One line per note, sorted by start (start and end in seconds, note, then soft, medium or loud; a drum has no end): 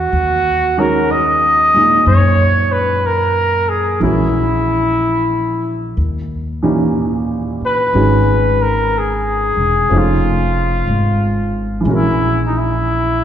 0.00 0.13 G#3 soft
0.00 0.13 C#4 soft
0.00 0.13 D4 soft
0.00 0.81 F#4 medium
0.00 0.14 A#4 soft
0.12 2.02 D#2 medium
0.77 4.02 D#3 soft
0.77 1.73 G#3 soft
0.77 4.01 C#4 soft
0.77 4.02 F#4 soft
0.77 1.13 A#4 medium
0.77 4.02 C#5 soft
1.11 2.07 D#5 medium
1.74 4.02 A#2 soft
1.74 4.00 G#3 soft
1.74 4.02 D#4 soft
1.74 4.03 G#4 soft
2.06 3.97 F#2 medium
2.06 2.73 C#5 medium
2.72 3.08 B4 medium
3.06 3.70 A#4 medium
3.69 4.01 G#4 medium
4.00 5.92 A#1 medium
4.00 5.96 E3 soft
4.00 5.97 G#3 soft
4.00 5.97 C#4 soft
4.00 5.93 E4 medium
4.00 5.98 F#4 soft
4.05 5.98 A#4 soft
5.97 7.56 D#2 medium
6.63 7.95 A#2 soft
6.63 7.94 E3 soft
6.63 7.93 C#4 soft
6.63 7.95 D#4 soft
6.63 7.95 G4 soft
7.61 muted upright bass stroke soft
7.65 8.64 B4 medium
7.94 9.53 G#1 medium
7.94 9.90 D#3 soft
7.94 9.90 G#3 soft
7.94 9.91 C#4 soft
7.94 9.91 F#4 soft
7.94 9.91 G#4 soft
8.62 9.00 A#4 medium
8.98 9.99 G#4 medium
9.57 9.88 E1 soft
9.89 10.84 F1 medium
9.89 11.85 F3 soft
9.89 11.86 A3 soft
9.89 11.86 C#4 soft
9.94 11.88 D#4 soft
9.94 11.88 G#4 soft
9.98 11.71 F4 medium
10.87 11.82 G#1 medium
11.81 13.24 E3 soft
11.81 13.24 G#3 soft
11.85 13.24 A#1 medium
11.85 13.24 C#4 soft
11.85 13.24 F#4 soft
11.91 12.42 E4 medium
11.91 13.24 A#4 soft
12.47 12.59 D#4 soft
12.58 13.24 E4 medium